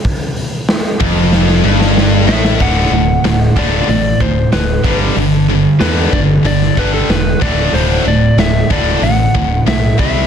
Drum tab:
HH |o-o-o-o---------|o---o---o---o---|o---o---o---o---|o---o---o---o---|
SD |----o---oo-oo-oo|----o-------o---|----o----o--o---|----o-------o---|
BD |o-----o---------|o-----o---o---o-|------o---o---o-|------o---o---o-|